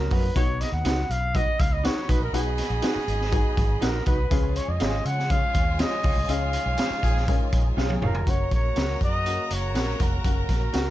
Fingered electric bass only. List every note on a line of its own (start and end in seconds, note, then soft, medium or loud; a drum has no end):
0.11 0.29 F#2 loud
0.36 0.63 B1 medium
0.72 0.82 D#2 medium
0.85 1.03 C#2 medium
1.09 1.46 B1 medium
1.60 1.87 C#2 medium
2.09 2.18 B1 medium
2.20 2.30 A#1 loud
2.33 2.60 B1 loud
2.70 2.79 A#1 medium
2.96 muted fingered electric bass stroke soft
3.08 3.44 G#1 medium
3.57 3.75 G#1 medium
3.82 4.00 A#1 medium
4.07 4.25 C2 medium
4.31 4.58 C#2 loud
4.68 4.77 F2 medium
4.81 4.99 G#1 medium
5.05 5.41 C#3 medium
5.55 5.82 D#2 medium
6.04 6.13 C#2 medium
6.16 6.25 C2 medium
6.28 6.56 C#2 medium
6.66 6.75 B1 loud
6.90 muted fingered electric bass stroke soft
7.03 7.39 A#1 medium
7.53 7.71 A#1 medium
7.77 7.95 B1 medium
8.02 8.20 F1 loud
8.27 8.45 F#1 loud
8.51 8.70 A#1 medium
8.77 8.95 C#2 medium
9.01 9.37 F#2 medium
9.51 9.75 F#1 medium
9.75 9.93 A#1 medium
10.00 10.18 F1 loud
10.24 10.43 F#1 medium
10.49 10.67 A#1 medium
10.74 10.90 C#2 medium